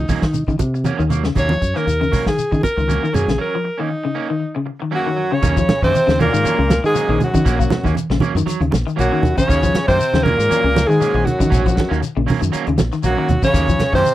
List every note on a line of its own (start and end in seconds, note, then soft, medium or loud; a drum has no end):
0.00 0.49 D#4 medium
0.09 0.23 F#3 medium
0.09 0.23 A#3 medium
0.09 0.22 C#4 medium
0.09 kick medium
0.09 open hi-hat medium
0.09 high conga medium
0.09 low conga medium
0.09 shekere medium
0.22 0.43 D#3 medium
0.22 muted clean electric guitar stroke soft
0.22 kick medium
0.22 snare medium
0.22 shekere soft
0.34 closed hi-hat medium
0.34 low conga medium
0.34 shekere medium
0.48 0.62 C#3 medium
0.48 0.57 D#3 medium
0.48 muted clean electric guitar stroke soft
0.48 kick medium
0.48 high conga medium
0.48 shekere soft
0.59 0.91 C3 medium
0.59 muted clean electric guitar stroke soft
0.59 kick medium
0.59 closed hi-hat medium
0.59 high conga medium
0.59 shekere medium
0.74 muted clean electric guitar stroke soft
0.74 shekere soft
0.84 1.01 F#3 medium
0.84 1.02 A#3 medium
0.84 1.02 C#4 medium
0.84 closed hi-hat medium
0.84 high conga medium
0.84 shekere medium
0.99 1.29 D#2 medium
0.99 1.13 D#3 medium
0.99 shekere soft
1.10 1.24 F#3 medium
1.10 1.23 A#3 medium
1.10 closed hi-hat soft
1.10 low conga medium
1.10 shekere medium
1.24 1.32 C#3 medium
1.24 muted clean electric guitar stroke soft
1.24 snare medium
1.24 shekere soft
1.35 1.56 D#2 loud
1.35 1.52 F#3 medium
1.35 1.53 A#3 medium
1.35 1.53 C#4 medium
1.35 1.78 C#5 loud
1.35 kick medium
1.35 closed hi-hat medium
1.35 low conga medium
1.35 shekere medium
1.49 1.64 F3 medium
1.49 closed hi-hat soft
1.49 high conga medium
1.49 shekere soft
1.61 1.73 F#2 medium
1.61 muted clean electric guitar stroke soft
1.61 kick medium
1.61 closed hi-hat soft
1.61 shekere medium
1.74 1.90 D#3 medium
1.74 1.86 A#3 soft
1.74 1.86 C#4 medium
1.74 2.27 A#4 loud
1.74 snare soft
1.74 closed hi-hat soft
1.74 shekere soft
1.86 2.07 D#2 loud
1.86 muted clean electric guitar stroke soft
1.86 closed hi-hat medium
1.86 shekere medium
2.00 2.15 C#3 medium
2.00 muted clean electric guitar stroke soft
2.00 high conga medium
2.00 shekere soft
2.12 2.26 F#3 medium
2.12 2.25 A#3 medium
2.12 2.25 C#4 medium
2.12 kick medium
2.12 open hi-hat medium
2.12 high conga medium
2.12 low conga medium
2.12 shekere medium
2.26 2.41 D#3 medium
2.26 2.62 G#4 medium
2.26 muted clean electric guitar stroke soft
2.26 kick medium
2.26 snare medium
2.26 shekere soft
2.38 muted fingered electric bass stroke soft
2.38 closed hi-hat medium
2.38 shekere medium
2.51 2.66 C#3 medium
2.51 2.61 D#3 medium
2.51 muted clean electric guitar stroke soft
2.51 kick medium
2.51 shekere soft
2.63 3.16 A#4 medium
2.63 muted clean electric guitar stroke soft
2.63 kick medium
2.63 closed hi-hat medium
2.63 high conga medium
2.63 shekere medium
2.77 2.97 C#2 medium
2.77 2.92 D#3 medium
2.77 muted clean electric guitar stroke soft
2.77 shekere soft
2.88 3.05 F#3 medium
2.88 3.05 A#3 medium
2.88 3.05 C#4 medium
2.88 closed hi-hat medium
2.88 high conga medium
2.88 shekere medium
3.03 3.17 D#3 medium
3.03 shekere soft
3.13 3.25 F#2 medium
3.13 3.27 F#3 medium
3.13 3.27 A#3 medium
3.13 3.26 C#4 medium
3.13 3.40 G#4 medium
3.13 closed hi-hat soft
3.13 low conga medium
3.13 shekere medium
3.27 3.37 A#1 medium
3.27 3.36 C#3 medium
3.27 muted clean electric guitar stroke soft
3.27 snare medium
3.27 closed hi-hat soft
3.27 high conga medium
3.27 shekere soft
3.38 3.55 F#3 medium
3.38 3.55 C#4 medium
3.38 3.82 A#4 medium
3.38 muted clean electric guitar stroke medium
3.55 3.68 F3 medium
3.64 muted clean electric guitar stroke soft
3.78 3.93 D#3 medium
3.78 3.89 A#3 soft
3.78 3.89 C#4 soft
3.78 4.56 D#4 medium
3.90 muted clean electric guitar stroke soft
4.04 4.19 C#3 medium
4.04 muted clean electric guitar stroke soft
4.15 4.28 A#3 medium
4.15 4.28 C#4 medium
4.29 4.44 D#3 medium
4.29 muted clean electric guitar stroke soft
4.55 4.70 C#3 medium
4.55 muted clean electric guitar stroke soft
4.66 muted clean electric guitar stroke soft
4.80 4.95 D#3 medium
4.80 muted clean electric guitar stroke medium
4.91 5.29 F#2 medium
4.91 5.08 F#3 medium
4.91 5.33 F#3 medium
4.91 5.08 A#3 medium
4.91 5.08 C#4 medium
4.91 5.35 F#4 medium
5.07 5.20 D#3 medium
5.16 5.31 F#3 medium
5.16 muted clean electric guitar stroke medium
5.31 5.38 C#3 medium
5.31 5.83 C#3 medium
5.31 5.82 C#4 medium
5.31 5.83 C#5 medium
5.31 muted clean electric guitar stroke soft
5.42 5.63 D#2 loud
5.42 5.56 F#3 medium
5.42 5.56 A#3 medium
5.42 5.55 C#4 medium
5.42 kick loud
5.42 closed hi-hat medium
5.42 low conga medium
5.42 shekere medium
5.56 5.71 F3 medium
5.56 muted clean electric guitar stroke soft
5.56 kick medium
5.56 closed hi-hat soft
5.56 shekere medium
5.69 muted clean electric guitar stroke soft
5.69 snare medium
5.69 closed hi-hat soft
5.69 high conga medium
5.69 low conga medium
5.82 5.92 F#2 medium
5.82 6.17 C3 medium
5.82 5.97 D#3 medium
5.82 5.93 A#3 soft
5.82 6.18 C4 medium
5.82 5.94 C#4 medium
5.82 6.17 C5 loud
5.82 kick medium
5.82 snare soft
5.82 high conga medium
5.82 shekere soft
5.94 muted clean electric guitar stroke soft
5.94 closed hi-hat medium
5.94 high conga medium
5.94 shekere medium
6.07 6.28 D#2 loud
6.07 6.21 C#3 medium
6.07 snare medium
6.07 closed hi-hat soft
6.19 6.80 A#2 medium
6.19 6.33 F#3 medium
6.19 6.33 A#3 medium
6.19 6.81 A#3 medium
6.19 6.32 C#4 medium
6.19 6.81 A#4 loud
6.19 closed hi-hat medium
6.19 high conga medium
6.19 low conga medium
6.19 shekere soft
6.33 6.43 G#2 medium
6.33 6.47 D#3 medium
6.33 muted clean electric guitar stroke soft
6.33 closed hi-hat soft
6.33 shekere medium
6.44 6.58 F#3 medium
6.44 6.58 A#3 medium
6.44 6.58 C#4 medium
6.44 muted fingered electric bass stroke soft
6.44 closed hi-hat medium
6.44 high conga medium
6.44 shekere medium
6.58 6.79 C#2 medium
6.58 6.72 C#3 medium
6.58 muted clean electric guitar stroke soft
6.70 muted clean electric guitar stroke soft
6.70 snare medium
6.70 closed hi-hat medium
6.70 high conga loud
6.70 shekere medium
6.84 7.19 G#2 medium
6.84 6.93 D#3 medium
6.84 6.98 D#3 medium
6.84 7.20 G#3 medium
6.84 7.19 G#4 medium
6.84 shekere soft
6.94 7.08 F#3 medium
6.94 7.08 A#3 medium
6.94 7.06 C#4 medium
6.94 closed hi-hat medium
6.94 shekere loud
7.08 7.18 A#1 loud
7.08 7.23 D#3 medium
7.08 7.19 A#3 soft
7.08 7.19 C#4 medium
7.20 7.94 F#2 medium
7.20 muted clean electric guitar stroke soft
7.20 closed hi-hat medium
7.20 low conga medium
7.20 shekere soft
7.24 7.95 F#3 medium
7.24 7.94 F#4 medium
7.34 7.41 C#3 medium
7.34 7.44 D#3 medium
7.34 muted clean electric guitar stroke soft
7.34 kick medium
7.34 closed hi-hat soft
7.34 high conga medium
7.34 shekere medium
7.45 7.66 A#1 loud
7.45 7.59 F#3 medium
7.45 7.58 A#3 loud
7.45 7.58 C#4 medium
7.45 kick loud
7.45 snare soft
7.45 closed hi-hat medium
7.45 shekere medium
7.59 7.73 A#3 medium
7.59 muted clean electric guitar stroke soft
7.59 kick medium
7.59 closed hi-hat soft
7.59 shekere medium
7.70 muted clean electric guitar stroke soft
7.70 snare medium
7.70 closed hi-hat medium
7.70 high conga loud
7.70 low conga medium
7.83 7.94 D#2 medium
7.83 7.99 D#3 medium
7.83 7.95 A#3 soft
7.83 7.95 C#4 medium
7.83 kick medium
7.83 snare soft
7.83 high conga medium
7.83 shekere soft
7.95 muted clean electric guitar stroke soft
7.95 closed hi-hat medium
7.95 high conga medium
7.95 shekere medium
8.10 8.19 A#1 medium
8.10 8.25 C#3 medium
8.10 snare medium
8.20 8.35 F#3 medium
8.20 8.34 A#3 medium
8.20 8.33 C#4 medium
8.20 closed hi-hat medium
8.20 high conga medium
8.20 low conga medium
8.20 shekere soft
8.35 8.45 F#2 medium
8.35 8.50 D#3 medium
8.35 muted clean electric guitar stroke medium
8.35 closed hi-hat soft
8.35 shekere medium
8.46 8.60 F#3 medium
8.46 muted clean electric guitar stroke loud
8.46 muted fingered electric bass stroke soft
8.46 closed hi-hat medium
8.46 high conga medium
8.46 shekere medium
8.60 8.70 D#2 medium
8.60 8.75 C#3 medium
8.60 muted clean electric guitar stroke soft
8.60 closed hi-hat soft
8.71 8.84 A#1 medium
8.71 muted clean electric guitar stroke soft
8.71 snare medium
8.71 closed hi-hat medium
8.71 high conga loud
8.71 shekere medium
8.87 9.01 D#3 medium
8.87 closed hi-hat soft
8.87 shekere soft
8.96 9.09 A#1 medium
8.96 9.35 F#2 medium
8.96 9.11 F#3 medium
8.96 9.10 A#3 medium
8.96 9.09 C#4 medium
8.96 9.35 F#4 medium
8.96 closed hi-hat medium
9.00 9.36 F#3 medium
9.00 shekere loud
9.10 9.26 D#3 medium
9.10 9.21 A#3 soft
9.10 9.21 C#4 medium
9.10 muted fingered electric bass stroke soft
9.22 9.34 D#2 loud
9.22 muted clean electric guitar stroke soft
9.22 closed hi-hat soft
9.22 low conga medium
9.22 shekere soft
9.36 9.84 C#3 medium
9.36 9.44 C#3 medium
9.36 9.85 C#4 medium
9.36 9.85 C#5 loud
9.36 muted clean electric guitar stroke soft
9.36 kick medium
9.36 high conga medium
9.36 shekere medium
9.47 9.69 D#2 loud
9.47 9.62 F#3 medium
9.47 9.60 A#3 medium
9.47 9.60 C#4 medium
9.47 kick loud
9.47 closed hi-hat medium
9.47 shekere medium
9.61 9.77 F3 medium
9.61 muted clean electric guitar stroke soft
9.61 kick medium
9.61 closed hi-hat soft
9.61 shekere medium
9.72 muted clean electric guitar stroke soft
9.72 snare medium
9.72 closed hi-hat medium
9.72 high conga medium
9.86 9.97 F#2 medium
9.86 10.22 C3 loud
9.86 10.02 D#3 medium
9.86 9.98 A#3 soft
9.86 10.24 C4 medium
9.86 10.24 C5 loud
9.86 muted clean electric guitar stroke medium
9.86 kick medium
9.86 snare soft
9.86 shekere soft
9.99 muted clean electric guitar stroke soft
9.99 closed hi-hat medium
9.99 shekere medium
10.13 10.33 D#2 loud
10.13 10.28 C#3 medium
10.13 snare medium
10.13 closed hi-hat soft
10.23 10.89 A#2 medium
10.23 10.38 F#3 medium
10.23 10.91 A#3 medium
10.23 10.37 A#3 medium
10.23 10.36 C#4 medium
10.23 10.89 A#4 loud
10.23 closed hi-hat soft
10.23 high conga medium
10.23 low conga medium
10.27 shekere soft
10.38 10.48 G#2 medium
10.38 muted clean electric guitar stroke soft
10.38 closed hi-hat soft
10.38 shekere medium
10.49 10.63 F#3 medium
10.49 10.62 A#3 medium
10.49 10.62 C#4 medium
10.49 muted fingered electric bass stroke soft
10.49 closed hi-hat medium
10.49 high conga medium
10.49 shekere medium
10.63 10.84 C#2 medium
10.63 10.78 C#3 medium
10.63 muted clean electric guitar stroke soft
10.74 muted clean electric guitar stroke soft
10.74 snare medium
10.74 closed hi-hat medium
10.74 high conga loud
10.74 shekere loud
10.87 11.26 G#2 medium
10.87 10.98 D#3 medium
10.87 11.04 D#3 medium
10.87 11.28 G#3 medium
10.87 11.26 G#4 loud
10.87 shekere soft
11.00 11.14 F#3 medium
11.00 11.15 A#3 medium
11.00 11.13 C#4 medium
11.00 closed hi-hat medium
11.00 shekere medium
11.14 11.24 A#1 loud
11.14 11.29 D#3 medium
11.14 11.25 C#4 medium
11.25 12.02 F#2 medium
11.25 12.03 F#3 medium
11.25 12.02 F#4 medium
11.25 muted clean electric guitar stroke soft
11.25 closed hi-hat medium
11.25 low conga medium
11.25 shekere soft
11.39 11.47 C#3 medium
11.39 11.49 D#3 medium
11.39 muted clean electric guitar stroke soft
11.39 kick medium
11.39 closed hi-hat soft
11.39 high conga medium
11.39 shekere medium
11.50 11.72 A#1 loud
11.50 11.64 F#3 medium
11.50 11.63 C#4 medium
11.50 muted clean electric guitar stroke medium
11.50 kick loud
11.50 snare soft
11.50 closed hi-hat medium
11.50 shekere medium
11.55 low conga medium
11.64 11.80 F3 medium
11.64 muted clean electric guitar stroke soft
11.64 kick medium
11.64 closed hi-hat soft
11.64 shekere medium
11.75 muted clean electric guitar stroke soft
11.75 kick medium
11.75 snare medium
11.75 closed hi-hat medium
11.80 high conga loud
11.89 12.00 D#2 medium
11.89 12.05 D#3 medium
11.89 12.00 A#3 medium
11.89 12.01 C#4 medium
11.89 snare soft
11.93 shekere soft
12.01 muted clean electric guitar stroke soft
12.01 closed hi-hat medium
12.01 shekere medium
12.17 12.26 A#1 medium
12.17 12.30 C#3 medium
12.27 12.41 F#3 medium
12.27 12.41 A#3 medium
12.27 12.40 C#4 medium
12.27 open hi-hat medium
12.27 high conga medium
12.27 low conga medium
12.27 shekere soft
12.41 12.51 F#2 medium
12.41 12.55 D#3 medium
12.41 muted clean electric guitar stroke soft
12.41 closed hi-hat soft
12.41 shekere medium
12.52 12.66 F#3 loud
12.52 12.66 A#3 loud
12.52 12.65 C#4 loud
12.52 muted fingered electric bass stroke soft
12.52 closed hi-hat medium
12.52 shekere medium
12.66 12.76 D#2 medium
12.66 12.81 C#3 medium
12.66 muted clean electric guitar stroke soft
12.66 closed hi-hat soft
12.78 12.90 A#1 medium
12.78 muted clean electric guitar stroke soft
12.78 snare medium
12.78 closed hi-hat medium
12.78 high conga loud
12.78 shekere medium
12.92 13.06 D#3 medium
12.92 snare soft
12.92 closed hi-hat soft
12.92 shekere soft
13.03 13.15 A#1 medium
13.03 13.41 F#2 medium
13.03 13.17 F#3 medium
13.03 13.16 A#3 medium
13.03 13.41 F#4 medium
13.03 snare soft
13.03 closed hi-hat medium
13.03 shekere medium
13.08 13.42 F#3 medium
13.17 13.32 D#3 medium
13.17 13.28 A#3 soft
13.17 13.28 C#4 medium
13.17 muted fingered electric bass stroke soft
13.28 13.40 D#2 medium
13.28 muted clean electric guitar stroke soft
13.28 closed hi-hat medium
13.28 low conga medium
13.28 shekere soft
13.43 13.50 C#3 medium
13.43 13.92 C#3 medium
13.43 13.92 C#4 medium
13.43 13.91 C#5 loud
13.43 muted clean electric guitar stroke soft
13.43 kick medium
13.43 high conga medium
13.43 shekere medium
13.53 13.74 D#2 loud
13.53 13.67 F#3 medium
13.53 13.67 A#3 medium
13.53 13.66 C#4 medium
13.53 kick medium
13.53 snare soft
13.53 closed hi-hat medium
13.53 shekere medium
13.67 13.83 F3 medium
13.67 muted clean electric guitar stroke soft
13.67 kick medium
13.67 closed hi-hat soft
13.67 shekere medium
13.79 muted clean electric guitar stroke soft
13.79 snare medium
13.79 closed hi-hat medium
13.79 high conga medium
13.79 low conga medium
13.93 14.02 F#2 medium
13.93 14.14 C3 medium
13.93 14.07 D#3 medium
13.93 14.04 A#3 soft
13.93 14.14 C4 loud
13.93 14.03 C#4 medium
13.93 14.14 C5 loud
13.93 kick medium
13.93 shekere soft
14.04 muted clean electric guitar stroke soft
14.04 closed hi-hat medium
14.04 shekere medium